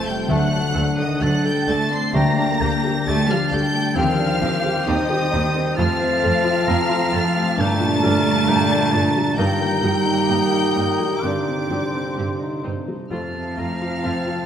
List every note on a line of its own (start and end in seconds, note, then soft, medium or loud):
0.00 0.25 F2 medium
0.00 0.33 F2 medium
0.00 0.33 C3 medium
0.00 0.06 A3 medium
0.00 2.12 A3 medium
0.00 0.26 C4 medium
0.00 0.31 C4 medium
0.00 0.33 C4 medium
0.00 0.31 A4 medium
0.00 0.33 C5 medium
0.00 3.52 C6 medium
0.06 0.29 G3 medium
0.06 0.29 A3 medium
0.06 0.30 G5 medium
0.06 0.29 G6 loud
0.28 2.10 D2 medium
0.28 0.39 D2 medium
0.28 1.64 D3 loud
0.28 2.14 D3 medium
0.28 0.98 F#3 medium
0.28 0.37 A3 medium
0.28 0.64 A3 medium
0.28 3.97 D4 medium
0.28 0.37 A4 medium
0.28 0.98 F#5 loud
0.28 1.24 F#5 medium
0.28 0.72 A5 medium
0.28 0.97 F#6 loud
0.50 0.88 D4 medium
0.73 0.84 D2 medium
0.73 1.11 A3 medium
0.73 0.82 A3 medium
0.73 0.82 A4 medium
0.97 1.21 D#3 medium
0.97 1.35 A4 medium
0.97 1.21 D#5 medium
0.97 1.21 D#6 loud
1.20 1.30 D2 medium
1.20 1.44 F#3 medium
1.20 1.28 A3 medium
1.20 1.58 D4 medium
1.20 1.28 A4 medium
1.20 1.45 F#5 medium
1.20 2.14 A5 loud
1.20 1.45 F#6 loud
1.44 1.68 G3 medium
1.44 1.82 A4 medium
1.44 1.68 G5 medium
1.44 1.69 G6 loud
1.68 1.77 D2 medium
1.68 1.76 A3 medium
1.68 1.92 A3 loud
1.68 2.05 D4 medium
1.68 1.76 A4 medium
1.68 1.92 A5 loud
1.68 1.92 A6 loud
1.92 2.15 A3 medium
1.92 2.15 C4 medium
1.92 2.15 C6 medium
1.92 2.15 C7 loud
2.13 3.93 D2 medium
2.13 2.23 D2 medium
2.13 3.48 D3 loud
2.13 4.01 D3 medium
2.13 2.22 G3 medium
2.13 5.77 G3 medium
2.13 2.49 A3 medium
2.13 3.07 A#3 loud
2.13 2.22 G4 medium
2.13 2.57 G5 medium
2.13 2.62 A#5 loud
2.13 3.07 A#5 loud
2.13 3.05 A#6 loud
2.38 4.00 A#3 medium
2.38 2.75 D4 medium
2.61 2.69 D2 medium
2.61 2.98 A#3 medium
2.61 2.69 A#3 medium
2.61 2.70 G4 medium
2.61 4.41 G4 medium
2.61 3.09 G5 medium
2.83 3.20 G4 medium
2.83 3.73 A4 medium
3.07 3.15 D2 medium
3.07 3.29 A3 loud
3.07 3.16 A3 medium
3.07 3.43 D4 medium
3.07 3.15 G4 medium
3.07 3.51 G5 medium
3.07 3.97 A5 loud
3.07 3.29 A5 loud
3.07 3.29 A6 loud
3.29 3.52 F3 medium
3.29 3.65 G4 medium
3.29 3.52 F5 medium
3.29 4.00 A5 medium
3.29 3.52 F6 loud
3.52 3.60 D2 medium
3.52 3.97 G3 loud
3.52 3.60 A3 medium
3.52 3.87 D4 medium
3.52 3.60 G4 medium
3.52 4.87 G5 medium
3.52 3.97 G5 loud
3.52 3.97 G6 loud
3.73 3.96 A3 medium
3.73 4.00 A4 medium
3.95 5.73 D#2 medium
3.95 4.05 D#2 medium
3.95 5.81 D#3 medium
3.95 4.87 F3 loud
3.95 4.30 C4 medium
3.95 7.43 C4 medium
3.95 4.05 C4 medium
3.95 4.06 G4 medium
3.95 4.87 F5 loud
3.95 5.76 G5 loud
3.95 4.39 G5 medium
3.95 4.88 F6 loud
4.19 7.62 C4 medium
4.19 4.55 D4 medium
4.41 4.51 D#2 medium
4.41 4.78 C4 medium
4.41 4.50 C4 medium
4.41 5.81 G4 medium
4.41 4.51 G4 medium
4.64 5.01 G4 medium
4.64 5.55 C5 medium
4.87 4.96 D#2 medium
4.87 5.78 D#3 loud
4.87 4.95 C4 medium
4.87 5.24 D#4 medium
4.87 4.95 G4 medium
4.87 5.78 D#5 medium
4.87 5.32 G5 medium
4.87 5.78 D#6 loud
5.09 5.46 G4 medium
5.09 7.62 C6 medium
5.32 5.41 D#2 medium
5.32 5.41 C4 medium
5.32 5.68 D#4 medium
5.32 5.41 G4 medium
5.56 5.78 C4 medium
5.56 7.62 C5 medium
5.77 7.54 F2 medium
5.77 5.86 F2 loud
5.77 7.55 F3 loud
5.77 7.62 F3 medium
5.77 7.43 A3 medium
5.77 5.86 A3 medium
5.77 7.58 C4 medium
5.77 5.86 F4 medium
5.77 7.55 F5 loud
5.77 6.69 A5 loud
5.77 7.54 A5 medium
5.77 7.54 F6 loud
6.01 6.36 C4 medium
6.22 6.32 F2 medium
6.22 6.59 A3 medium
6.22 6.31 A3 medium
6.22 6.31 F4 medium
6.22 7.62 F4 medium
6.44 6.81 F4 medium
6.68 6.76 F2 medium
6.68 6.77 A3 medium
6.68 7.04 C4 medium
6.68 6.77 F4 medium
6.68 7.13 F5 medium
6.68 7.15 A#5 loud
6.89 7.26 F4 medium
7.12 7.23 F2 medium
7.12 7.22 A3 medium
7.12 7.49 C4 medium
7.12 7.22 F4 medium
7.12 7.62 F5 medium
7.12 7.62 A5 loud
7.35 7.58 A3 medium
7.35 9.41 G4 medium
7.57 9.33 G2 medium
7.57 8.88 G2 loud
7.57 7.66 G2 medium
7.57 9.36 G2 medium
7.57 11.20 A#2 medium
7.57 9.37 A3 loud
7.57 7.67 A3 medium
7.57 9.36 D4 loud
7.57 7.67 D4 medium
7.57 9.34 D4 loud
7.57 9.37 A5 loud
7.57 9.34 A#5 medium
7.57 9.37 A6 loud
7.61 7.91 G5 loud
7.80 8.16 A#2 medium
7.80 9.41 D3 medium
8.03 8.12 G2 medium
8.03 11.27 G3 medium
8.03 8.39 G3 medium
8.03 8.12 A3 medium
8.03 8.12 D4 medium
8.03 8.50 F5 medium
8.25 8.61 D4 medium
8.25 9.14 D4 medium
8.47 8.55 G2 medium
8.47 8.83 A#2 medium
8.47 8.56 A3 medium
8.47 8.56 D4 medium
8.47 8.93 G5 loud
8.70 9.07 D4 medium
8.70 9.41 D5 medium
8.92 9.01 G2 medium
8.92 9.29 A#2 medium
8.92 9.01 A3 medium
8.92 9.01 D4 medium
8.92 9.37 A5 medium
9.16 9.38 G3 medium
9.36 11.22 G2 medium
9.36 9.46 G2 medium
9.36 11.19 G2 medium
9.36 11.23 G3 loud
9.36 9.46 A#3 medium
9.36 9.46 D#4 medium
9.36 11.19 D#4 medium
9.36 12.76 G4 medium
9.36 11.19 G5 loud
9.36 11.19 A#5 medium
9.36 9.99 A#5 loud
9.36 11.19 G6 loud
9.61 11.27 D#3 medium
9.61 9.97 A#3 medium
9.82 9.90 G2 medium
9.82 10.20 G3 medium
9.82 9.90 A#3 medium
9.82 11.27 A#3 medium
9.82 9.91 D#4 medium
10.05 10.42 D#4 medium
10.05 13.15 G4 medium
10.28 10.37 G2 medium
10.28 10.36 A#3 medium
10.28 10.66 A#3 medium
10.28 10.37 D#4 medium
10.28 10.74 A#4 medium
10.28 11.26 D#5 medium
10.52 10.90 D#4 medium
10.52 13.15 G5 medium
10.75 10.84 G2 medium
10.75 10.83 A#3 medium
10.75 11.13 A#3 medium
10.75 10.83 D#4 medium
10.75 11.26 A#4 medium
11.00 11.23 G3 medium
11.21 11.30 G2 medium
11.21 13.15 G2 medium
11.21 13.08 G2 medium
11.21 12.61 D3 medium
11.21 11.30 C4 medium
11.21 12.76 C4 medium
11.21 12.74 D#4 medium
11.21 11.30 G4 medium
11.21 12.65 G5 medium
11.21 12.78 C6 medium
11.21 12.64 D6 medium
11.26 12.66 D5 medium
11.46 13.15 C3 medium
11.46 11.85 C4 medium
11.69 11.77 G2 medium
11.69 12.08 G3 medium
11.69 13.56 C4 medium
11.69 11.78 C4 medium
11.69 11.78 G4 medium
11.95 12.17 C4 soft
12.16 12.24 G2 medium
12.16 12.26 C4 medium
12.16 12.55 C4 soft
12.16 12.26 G4 medium
12.16 12.62 C5 medium
12.39 12.79 D#4 medium
12.39 13.14 D#5 medium
12.64 12.72 G2 medium
12.64 12.72 C4 medium
12.64 13.02 C4 medium
12.64 12.72 D#4 medium
12.64 14.03 C5 medium
12.88 13.11 G3 soft
12.88 13.15 D#4 medium
13.10 14.46 F2 medium
13.10 13.19 F2 medium
13.10 14.46 F3 medium
13.10 14.46 A3 medium
13.10 13.19 A3 medium
13.10 14.46 C4 medium
13.10 13.19 F4 medium
13.10 14.46 F5 medium
13.10 13.61 A5 medium
13.10 14.46 A5 medium
13.10 14.46 F6 medium
13.34 14.46 C3 soft
13.34 13.72 C4 soft
13.57 13.66 F2 medium
13.57 13.94 A3 soft
13.57 13.66 A3 soft
13.57 14.46 C4 soft
13.57 13.65 F4 medium
13.57 14.08 A#5 medium
13.81 14.46 F4 soft
13.81 14.18 F4 soft
14.03 14.12 F2 medium
14.03 14.13 A3 medium
14.03 14.40 C4 medium
14.03 14.12 F4 medium
14.03 14.46 C5 medium
14.03 14.46 A5 medium
14.27 14.46 F4 soft
14.27 14.46 F5 soft